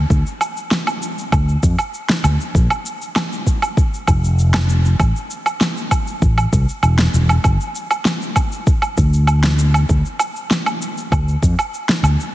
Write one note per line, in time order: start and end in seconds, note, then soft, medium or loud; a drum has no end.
0.10 0.22 D2 medium
0.10 kick loud
0.10 cabasa soft
0.26 cabasa soft
0.41 cabasa medium
0.41 low woodblock medium
0.57 cabasa soft
0.71 snare medium
0.71 cabasa soft
0.87 cabasa soft
0.87 low woodblock medium
1.02 cabasa medium
1.19 cabasa soft
1.32 1.55 D2 medium
1.32 kick loud
1.32 cabasa soft
1.32 low woodblock medium
1.49 cabasa soft
1.63 1.75 F2 medium
1.63 kick medium
1.63 cabasa medium
1.79 cabasa soft
1.79 low woodblock medium
1.94 cabasa soft
2.09 snare medium
2.09 cabasa soft
2.24 2.36 D2 medium
2.24 cabasa medium
2.24 low woodblock medium
2.41 cabasa soft
2.55 2.66 A#1 medium
2.55 kick loud
2.55 cabasa soft
2.70 cabasa soft
2.70 low woodblock medium
2.86 cabasa medium
3.02 cabasa soft
3.16 snare medium
3.16 cabasa soft
3.16 low woodblock medium
3.32 cabasa soft
3.47 kick medium
3.47 cabasa medium
3.62 cabasa soft
3.62 low woodblock medium
3.77 kick loud
3.77 cabasa soft
3.94 cabasa soft
4.07 4.93 F1 medium
4.07 kick loud
4.07 cabasa medium
4.07 low woodblock medium
4.24 cabasa soft
4.39 cabasa soft
4.54 snare medium
4.54 cabasa soft
4.54 low woodblock medium
4.69 cabasa medium
4.85 cabasa soft
5.00 5.11 A1 medium
5.00 kick loud
5.00 cabasa soft
5.00 low woodblock medium
5.16 cabasa soft
5.31 cabasa medium
5.46 cabasa soft
5.46 low woodblock medium
5.61 snare medium
5.61 cabasa soft
5.77 cabasa soft
5.91 kick medium
5.91 cabasa medium
5.91 low woodblock medium
6.08 cabasa soft
6.22 6.45 A1 medium
6.22 kick loud
6.22 cabasa soft
6.38 cabasa soft
6.38 low woodblock medium
6.53 6.64 C2 medium
6.53 kick loud
6.53 cabasa medium
6.69 cabasa soft
6.83 7.06 E1 medium
6.83 cabasa soft
6.83 low woodblock medium
6.99 snare medium
6.99 cabasa soft
7.14 7.37 E1 loud
7.14 cabasa medium
7.29 cabasa soft
7.29 low woodblock medium
7.44 7.56 G1 medium
7.44 kick loud
7.44 cabasa soft
7.44 low woodblock medium
7.61 cabasa soft
7.75 cabasa medium
7.91 cabasa soft
7.91 low woodblock medium
8.05 snare medium
8.05 cabasa soft
8.22 cabasa soft
8.36 kick medium
8.36 cabasa medium
8.36 low woodblock medium
8.52 cabasa soft
8.67 kick loud
8.67 cabasa soft
8.82 cabasa soft
8.82 low woodblock medium
8.98 9.83 D2 medium
8.98 kick medium
8.98 cabasa medium
9.14 cabasa soft
9.27 cabasa soft
9.27 low woodblock medium
9.44 snare medium
9.44 cabasa soft
9.59 cabasa medium
9.74 cabasa soft
9.74 low woodblock medium
9.89 10.01 D2 medium
9.89 kick loud
9.89 cabasa soft
10.05 cabasa soft
10.19 cabasa medium
10.19 low woodblock medium
10.36 cabasa soft
10.51 snare medium
10.51 cabasa soft
10.66 cabasa soft
10.66 low woodblock medium
10.82 cabasa medium
10.98 cabasa soft
11.12 11.35 D2 medium
11.12 kick loud
11.12 cabasa soft
11.12 low woodblock medium
11.28 cabasa soft
11.43 11.54 F2 medium
11.43 kick medium
11.43 cabasa medium
11.59 cabasa soft
11.59 low woodblock medium
11.74 cabasa soft
11.89 snare medium
11.89 cabasa soft
12.03 12.15 D2 medium
12.03 cabasa medium
12.03 low woodblock medium
12.20 cabasa soft